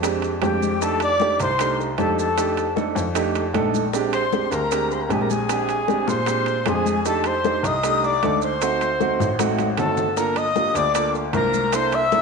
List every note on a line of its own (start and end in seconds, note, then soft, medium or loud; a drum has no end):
0.00 0.38 F2 medium
0.00 0.30 G#3 medium
0.00 0.30 C4 medium
0.00 0.31 D4 medium
0.00 0.31 G4 medium
0.00 high conga soft
0.00 high timbale medium
0.00 maracas medium
0.04 high bongo medium
0.22 high bongo soft
0.22 high conga soft
0.22 high timbale medium
0.22 maracas soft
0.41 1.34 F2 medium
0.41 0.69 G#3 medium
0.41 0.69 C4 medium
0.41 0.70 D4 medium
0.41 0.70 G4 medium
0.41 0.85 G4 medium
0.41 0.84 G5 medium
0.41 high bongo soft
0.41 low bongo medium
0.41 high conga medium
0.41 high timbale medium
0.41 low timbale medium
0.41 maracas soft
0.62 high conga medium
0.62 maracas medium
0.81 1.08 A3 medium
0.81 1.09 D4 medium
0.81 1.09 D#4 medium
0.81 1.09 G4 medium
0.81 1.02 A4 medium
0.81 1.01 A5 medium
0.81 high bongo medium
0.81 high conga soft
0.81 maracas medium
1.00 1.39 D5 loud
1.00 1.38 D6 medium
1.00 high conga soft
1.00 high timbale medium
1.00 maracas soft
1.19 1.47 A3 medium
1.19 1.48 D4 medium
1.19 1.48 D#4 medium
1.19 1.48 G4 medium
1.19 high bongo medium
1.19 high conga medium
1.19 maracas soft
1.40 1.95 C2 medium
1.40 1.78 C5 loud
1.40 1.78 C6 medium
1.40 high bongo soft
1.40 high conga soft
1.40 high timbale medium
1.40 maracas medium
1.59 1.87 A3 medium
1.59 1.87 D4 medium
1.59 1.87 D#4 medium
1.59 1.87 G4 medium
1.59 high bongo medium
1.59 high conga soft
1.59 high timbale medium
1.59 maracas medium
1.79 high bongo soft
1.79 high conga soft
1.79 maracas soft
1.98 2.90 F2 medium
1.98 2.25 A3 medium
1.98 2.26 D4 medium
1.98 2.26 D#4 medium
1.98 2.26 G4 medium
1.98 2.18 A4 medium
1.98 2.17 A5 medium
1.98 high bongo soft
1.98 low bongo medium
1.98 high conga medium
1.98 high timbale medium
1.98 maracas soft
2.18 2.73 A4 medium
2.18 2.73 A5 medium
2.18 maracas medium
2.37 2.65 A3 medium
2.37 2.65 D4 medium
2.37 2.65 D#4 medium
2.37 2.65 G4 medium
2.37 high bongo medium
2.37 high conga soft
2.37 high timbale medium
2.37 maracas medium
2.57 high conga soft
2.57 high timbale medium
2.57 maracas soft
2.76 3.04 A3 medium
2.76 3.04 D4 medium
2.76 3.04 D#4 medium
2.76 3.04 A4 medium
2.76 high bongo medium
2.76 high conga medium
2.76 maracas soft
2.95 3.50 F2 medium
2.95 high bongo soft
2.95 high conga medium
2.95 maracas medium
3.15 3.42 A3 medium
3.15 3.42 D4 medium
3.15 3.43 D#4 medium
3.15 3.43 G4 medium
3.15 high bongo medium
3.15 high conga soft
3.15 high timbale medium
3.15 maracas medium
3.35 high bongo soft
3.35 high conga soft
3.35 high timbale medium
3.35 maracas soft
3.54 4.46 A#1 medium
3.54 3.81 A3 medium
3.54 3.82 D4 medium
3.54 3.82 D#4 medium
3.54 3.82 A4 medium
3.54 high bongo soft
3.54 low bongo medium
3.54 high conga medium
3.54 high timbale medium
3.54 maracas soft
3.74 high conga medium
3.74 maracas medium
3.93 4.21 G#3 medium
3.93 4.21 C4 medium
3.93 4.21 D4 medium
3.93 4.21 G4 loud
3.93 high bongo medium
3.93 maracas medium
4.13 4.53 C5 medium
4.13 4.53 C6 medium
4.13 high conga soft
4.13 high timbale medium
4.13 maracas soft
4.33 4.60 G#3 medium
4.33 4.60 C4 medium
4.33 4.60 D4 medium
4.33 4.60 G4 medium
4.33 high bongo medium
4.33 high conga medium
4.33 maracas soft
4.51 5.06 D2 medium
4.51 4.93 A#4 medium
4.51 4.95 A#5 medium
4.51 high bongo soft
4.51 high conga soft
4.51 high timbale medium
4.51 maracas medium
4.71 4.99 G#3 medium
4.71 4.99 C4 medium
4.71 4.99 D4 medium
4.71 4.99 G4 medium
4.71 high bongo medium
4.71 high conga soft
4.71 high timbale medium
4.71 maracas medium
4.91 5.03 C5 medium
4.91 5.04 C6 medium
4.91 high bongo soft
4.91 high conga soft
4.91 maracas soft
5.01 5.13 A#4 medium
5.01 5.14 A#5 medium
5.09 6.01 A#1 medium
5.09 5.37 G#3 medium
5.09 5.37 C4 medium
5.09 5.37 D4 medium
5.09 5.38 G4 medium
5.09 5.22 G#4 medium
5.09 5.23 G#5 medium
5.09 high bongo soft
5.09 low bongo medium
5.09 high conga medium
5.09 high timbale medium
5.09 maracas soft
5.21 5.33 A#4 medium
5.21 5.32 A#5 medium
5.30 6.10 G#4 medium
5.30 6.11 G#5 medium
5.30 high conga medium
5.30 maracas medium
5.49 5.76 G#3 medium
5.49 5.76 C4 medium
5.49 5.77 D4 medium
5.49 5.77 G4 medium
5.49 high bongo medium
5.49 high conga soft
5.49 high timbale medium
5.49 maracas medium
5.69 high conga soft
5.69 high timbale medium
5.69 maracas soft
5.87 6.15 G#3 medium
5.87 6.15 C4 medium
5.87 6.16 D4 medium
5.87 6.16 G4 medium
5.87 high bongo medium
5.87 high conga medium
5.87 maracas soft
6.07 6.62 A#2 medium
6.07 6.70 C5 medium
6.07 6.70 C6 medium
6.07 high bongo soft
6.07 high conga medium
6.07 maracas medium
6.26 6.54 G#3 medium
6.26 6.54 C4 medium
6.26 6.55 D4 medium
6.26 6.55 G4 medium
6.26 high bongo medium
6.26 high conga soft
6.26 high timbale medium
6.26 maracas medium
6.46 high bongo soft
6.46 high conga soft
6.46 high timbale medium
6.46 maracas soft
6.66 7.58 F2 medium
6.66 6.93 G#3 medium
6.66 6.93 C4 medium
6.66 6.94 D4 medium
6.66 6.94 G#4 medium
6.66 7.06 G#4 medium
6.66 7.06 G#5 medium
6.66 high bongo soft
6.66 low bongo medium
6.66 high conga medium
6.66 high timbale medium
6.66 maracas soft
6.86 high conga medium
6.86 maracas medium
7.05 7.33 A3 medium
7.05 7.33 D4 medium
7.05 7.33 D#4 medium
7.05 7.33 G4 medium
7.05 7.28 A4 medium
7.05 7.27 A5 medium
7.05 high bongo medium
7.05 maracas medium
7.24 7.68 C5 medium
7.24 7.67 C6 medium
7.24 high conga soft
7.24 high timbale medium
7.24 maracas soft
7.44 7.72 A3 medium
7.44 7.72 D4 medium
7.44 7.72 D#4 medium
7.44 7.72 G4 medium
7.44 high bongo medium
7.44 high conga medium
7.44 maracas soft
7.63 8.18 C2 medium
7.63 8.07 D#5 loud
7.63 8.06 D#6 medium
7.63 high bongo soft
7.63 high conga soft
7.63 high timbale medium
7.63 maracas medium
7.83 8.11 A3 medium
7.83 8.11 D4 medium
7.83 8.11 D#4 medium
7.83 8.12 G4 medium
7.83 high bongo medium
7.83 high conga soft
7.83 high timbale medium
7.83 maracas medium
8.03 8.43 D5 medium
8.03 8.42 D6 medium
8.03 high bongo soft
8.03 high conga soft
8.03 maracas soft
8.22 9.14 D2 medium
8.22 8.50 A3 medium
8.22 8.50 D4 medium
8.22 8.50 D#4 medium
8.22 8.50 A4 medium
8.22 high bongo soft
8.22 low bongo medium
8.22 high conga medium
8.22 high timbale medium
8.22 maracas soft
8.42 9.48 C5 loud
8.42 9.48 C6 medium
8.42 maracas medium
8.62 8.89 A3 medium
8.62 8.89 C4 medium
8.62 8.89 D#4 medium
8.62 8.89 F#4 medium
8.62 high bongo medium
8.62 high conga soft
8.62 high timbale medium
8.62 maracas medium
8.81 high conga soft
8.81 high timbale medium
8.81 maracas soft
9.01 9.28 A3 medium
9.01 9.28 C4 medium
9.01 9.28 D#4 medium
9.01 9.28 F#4 medium
9.01 high bongo medium
9.01 high conga medium
9.01 maracas soft
9.20 9.74 A1 medium
9.20 high bongo soft
9.20 high conga medium
9.20 maracas medium
9.39 9.66 A3 medium
9.39 9.67 C4 medium
9.39 9.67 D#4 medium
9.39 9.67 F#4 medium
9.39 high bongo medium
9.39 high conga medium
9.39 high timbale medium
9.39 maracas medium
9.59 high bongo soft
9.59 high conga medium
9.59 high timbale medium
9.59 maracas soft
9.77 10.69 G1 medium
9.77 10.05 A3 medium
9.77 10.05 C4 medium
9.77 10.06 D#4 medium
9.77 10.06 F#4 medium
9.77 10.19 A4 medium
9.77 10.20 A5 medium
9.77 high bongo soft
9.77 low bongo medium
9.77 low conga medium
9.77 high timbale medium
9.77 maracas soft
9.97 low conga medium
9.97 maracas medium
10.17 10.44 A#3 medium
10.17 10.44 D4 medium
10.17 10.44 F4 medium
10.17 10.45 A4 medium
10.17 10.39 A#4 loud
10.17 10.39 A#5 medium
10.17 high bongo medium
10.17 high conga soft
10.17 maracas medium
10.36 10.78 D#5 loud
10.36 10.77 D#6 medium
10.36 high conga soft
10.36 high timbale medium
10.36 maracas soft
10.55 10.83 A#3 medium
10.55 10.83 D4 medium
10.55 10.83 F4 medium
10.55 10.84 G4 medium
10.55 high bongo medium
10.55 high conga medium
10.55 maracas soft
10.74 11.29 D2 medium
10.74 11.15 D5 loud
10.74 11.14 D6 medium
10.74 high bongo soft
10.74 high conga soft
10.74 high timbale medium
10.74 maracas medium
10.94 11.22 A#3 medium
10.94 11.22 D4 medium
10.94 11.22 F4 medium
10.94 11.23 A4 medium
10.94 high bongo medium
10.94 high conga soft
10.94 high timbale medium
10.94 maracas medium
11.15 high bongo soft
11.15 high conga soft
11.15 maracas soft
11.33 12.22 C2 medium
11.33 11.61 A#3 medium
11.33 11.61 D4 medium
11.33 11.62 F4 medium
11.33 11.76 A#4 medium
11.33 11.62 C5 medium
11.33 11.76 A#5 medium
11.33 high bongo soft
11.33 low bongo medium
11.33 high conga medium
11.33 high timbale medium
11.33 maracas soft
11.53 high conga medium
11.53 maracas medium
11.73 12.00 A#3 medium
11.73 12.00 D4 medium
11.73 12.00 E4 medium
11.73 12.00 A4 medium
11.73 11.96 C5 loud
11.73 11.95 C6 medium
11.73 high bongo medium
11.73 high conga soft
11.73 high timbale medium
11.73 maracas medium
11.92 12.22 E5 loud
11.92 12.22 E6 medium
11.92 high conga soft
11.92 high timbale medium
11.92 maracas soft
12.11 12.22 A#3 medium
12.11 12.22 D4 medium
12.11 12.22 E4 medium
12.11 12.22 A4 medium
12.11 high bongo medium
12.11 high conga medium
12.11 maracas soft